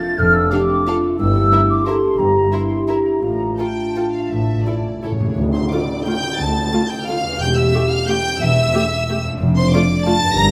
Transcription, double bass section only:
0.19 0.46 F1 medium
1.19 1.46 G1 medium
2.19 2.46 G1 medium
3.22 3.52 A1 medium
4.30 4.60 A1 medium
5.38 5.66 D2 medium
6.39 6.67 D2 medium
7.40 7.68 E1 medium
8.41 8.69 E1 medium
9.41 9.68 F1 loud
10.37 10.51 G1 medium

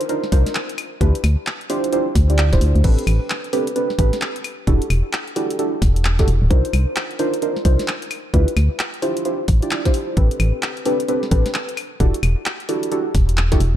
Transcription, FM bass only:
0.32 0.45 C2 medium
1.01 1.13 D2 loud
1.24 1.36 D2 medium
2.15 2.52 D2 medium
2.53 2.60 D1 loud
2.61 2.74 D2 medium
2.75 2.83 D2 loud
2.84 2.97 A1 loud
3.07 3.20 A1 medium
3.99 4.11 A1 medium
4.67 4.80 E1 medium
4.90 5.03 E1 medium
5.82 6.26 E1 loud
6.28 6.40 E1 loud
6.42 6.49 D1 loud
6.51 6.63 C2 loud
6.73 6.86 C2 medium
7.65 7.78 C2 medium
8.34 8.46 D2 loud
8.57 8.69 D2 medium
9.48 9.61 A1 medium
10.17 10.29 A1 medium
10.40 10.52 A1 medium
11.31 11.44 A1 medium
12.00 12.13 E1 medium
12.23 12.36 E1 medium
13.15 13.59 E1 medium
13.60 13.73 E1 loud

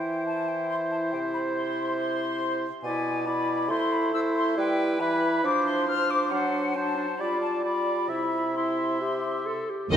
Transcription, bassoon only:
0.00 1.12 E3 soft
1.13 2.66 C3 medium
2.83 3.71 B2 medium
3.69 4.56 A3 medium
4.57 5.01 G3 medium
5.00 5.43 E3 medium
5.44 6.29 F3 medium
6.31 7.14 F#3 medium
7.19 8.11 G3 medium
8.09 9.70 C3 medium
9.91 9.97 D#3 medium

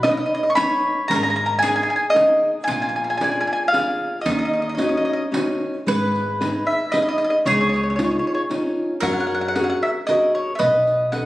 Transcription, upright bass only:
0.00 0.19 B1 medium
1.10 1.79 G#1 medium
2.67 3.36 A#1 medium
4.25 4.95 D#2 loud
5.87 6.56 G#1 medium
7.45 8.13 C#2 loud
9.02 9.71 F#2 loud
10.60 11.26 B1 loud

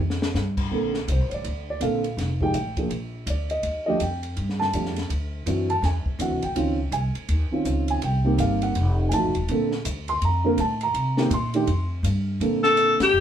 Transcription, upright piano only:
0.71 0.92 D3 medium
0.71 0.92 A#3 soft
0.71 0.92 C4 soft
0.71 0.92 A4 medium
1.12 1.32 C5 medium
1.34 1.66 D5 medium
1.70 1.82 D5 medium
1.80 2.01 D3 soft
1.80 2.01 A#3 soft
1.80 2.01 C4 medium
1.80 2.02 A4 medium
1.80 2.37 F5 medium
2.41 2.53 F3 medium
2.41 2.53 G#3 medium
2.41 2.53 D#4 medium
2.41 2.54 G4 medium
2.41 2.88 G5 loud
2.77 2.89 F3 medium
2.77 2.90 A#3 soft
2.77 2.90 D4 soft
2.77 2.90 G#4 medium
3.30 3.51 D5 medium
3.51 3.84 D#5 medium
3.86 3.99 F3 medium
3.86 3.99 A3 medium
3.86 4.00 D4 medium
3.86 4.00 G4 medium
3.86 4.00 D#5 medium
4.01 4.56 G5 medium
4.59 5.06 A5 medium
4.73 4.94 F3 medium
4.73 4.95 A3 soft
4.73 4.95 D4 medium
4.73 4.95 G4 medium
5.46 5.67 E3 medium
5.46 5.67 C4 soft
5.46 5.68 D4 medium
5.46 5.68 F#4 medium
5.70 5.83 A5 medium
5.85 6.18 G#5 medium
6.19 6.40 E3 medium
6.19 6.40 C4 soft
6.19 6.41 D4 soft
6.19 6.41 F#4 medium
6.19 6.43 F#5 medium
6.43 6.89 G5 medium
6.56 6.77 D#3 medium
6.56 6.77 C4 medium
6.56 6.77 C#4 medium
6.56 6.77 F4 medium
6.93 7.48 G#5 medium
7.51 7.99 D#3 medium
7.51 8.00 C4 soft
7.51 8.00 C#4 soft
7.51 8.00 F4 medium
7.90 8.03 G#5 medium
8.03 8.37 G5 medium
8.24 8.72 D#3 medium
8.24 8.72 A#3 medium
8.24 8.73 C4 medium
8.24 8.73 G4 medium
8.40 8.62 F5 medium
8.63 9.09 F#5 medium
9.09 9.12 G#5 medium
9.13 9.33 F3 medium
9.13 9.33 A3 medium
9.13 9.33 D#4 medium
9.13 9.34 F#4 medium
9.13 9.68 A5 medium
9.49 9.69 D3 medium
9.49 9.70 A#3 medium
9.49 9.70 C4 soft
9.49 9.70 A4 medium
10.09 10.22 C6 loud
10.25 10.57 A#5 medium
10.44 10.56 D3 medium
10.44 10.57 A#3 medium
10.44 10.57 C4 medium
10.44 10.57 A#4 medium
10.60 10.81 A5 medium
10.83 11.29 A#5 medium
11.17 11.29 D#3 medium
11.17 11.30 A#3 medium
11.17 11.30 C4 medium
11.17 11.30 G4 medium
11.34 11.88 C6 medium
11.54 11.66 D#3 medium
11.54 11.66 A3 medium
11.54 11.67 D4 medium
11.54 11.67 G4 medium
12.41 12.95 D3 medium
12.41 12.96 A#3 medium
12.41 12.96 C4 medium
12.41 12.96 A4 medium

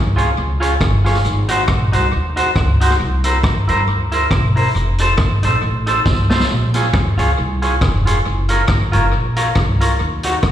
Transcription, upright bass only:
0.00 0.31 C2 medium
0.37 0.74 C#2 medium
0.81 1.18 G1 loud
1.25 1.62 G#1 loud
1.68 1.89 A#1 medium
1.94 2.10 C2 medium
2.13 2.50 D#2 medium
2.56 2.93 C#2 loud
3.00 3.37 C2 medium
3.44 3.65 E2 medium
3.70 3.85 G2 loud
3.87 4.24 D2 loud
4.31 4.68 E1 medium
4.75 5.12 F1 medium
5.18 5.39 A1 medium
5.45 5.60 A#1 loud
5.63 6.00 A1 medium
6.06 6.43 C2 medium
6.50 6.87 A#1 medium
6.94 7.15 D#2 medium
7.18 7.34 C#2 medium
7.38 7.75 C2 medium
7.82 8.18 F1 medium
8.26 8.62 F#1 loud
8.68 8.89 G#1 medium
8.95 9.10 F#1 loud
9.13 9.50 A#1 medium
9.56 9.93 C2 medium
10.00 10.37 D#2 loud
10.43 10.52 F2 medium

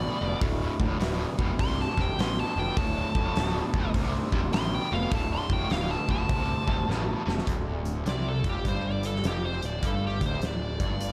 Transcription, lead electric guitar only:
0.00 0.39 D5 loud
1.60 1.79 C6 loud
1.81 2.01 A5 medium
2.01 2.19 G5 loud
2.20 2.38 C6 medium
2.40 2.59 A5 medium
2.59 2.77 G5 medium
2.78 3.91 A5 loud
4.54 4.73 C6 loud
4.75 4.93 G5 medium
4.93 5.12 F5 loud
5.15 5.33 A5 medium
5.33 5.51 C6 loud
5.53 5.71 G5 loud
5.71 5.90 F5 medium
5.91 6.09 A5 medium
6.11 7.44 A5 loud
8.09 8.27 D5 loud
8.28 8.46 A4 medium
8.49 8.67 G4 medium
8.68 8.86 C5 medium
8.86 9.05 D5 medium
9.05 9.24 A4 medium
9.27 9.45 G4 medium
9.45 9.64 C5 medium
9.65 9.84 D5 medium
9.86 10.04 A4 medium
10.07 10.24 G4 medium
10.26 10.43 C5 medium
10.47 11.12 D5 medium

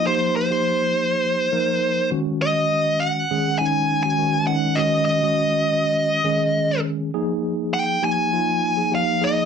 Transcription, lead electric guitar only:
0.07 0.33 C5 medium
0.36 2.09 C5 medium
2.42 3.03 D#5 medium
3.00 3.58 F#5 loud
3.59 4.02 G#5 loud
4.03 4.44 G#5 loud
4.47 4.78 F#5 medium
4.75 5.04 D#5 medium
5.05 6.80 D#5 medium
7.74 8.04 G5 loud
8.04 8.95 G#5 loud
8.95 9.24 F5 medium
9.24 9.45 D#5 medium

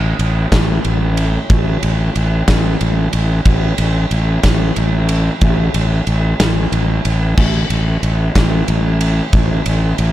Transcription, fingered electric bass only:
0.00 0.12 A1 medium
0.19 0.45 A1 loud
0.52 0.78 A1 loud
0.85 1.36 A1 medium
1.50 1.76 A1 loud
1.83 2.08 A1 loud
2.16 2.41 A1 loud
2.48 2.74 A1 loud
2.81 3.07 A1 medium
3.13 3.39 A1 medium
3.45 3.71 A1 loud
3.78 4.04 A1 loud
4.11 4.37 A1 loud
4.44 4.69 A1 loud
4.77 5.28 A1 medium
5.42 5.68 A1 loud
5.74 6.00 A1 loud
6.07 6.33 A1 loud
6.40 6.65 A1 loud
6.72 6.98 A1 medium
7.05 7.37 A1 medium
7.37 7.63 A1 loud
7.70 7.96 A1 medium
8.03 8.28 A1 loud
8.35 8.61 A1 loud
8.68 9.20 A1 medium
9.33 9.59 A1 loud
9.66 9.92 A1 loud
9.99 10.12 A1 loud

